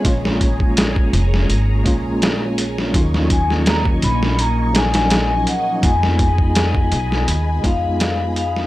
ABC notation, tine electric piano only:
X:1
M:4/4
L:1/8
Q:1/4=83
K:Ebm
V:1 name="Tine electric piano"
[A,B,DF]4- [A,B,DF] [A,B,DF]3 | [G,DEF]4- [G,DEF] [F,G,DE]3 | [A,CEF]4- [A,CEF] [A,CEF]3 |]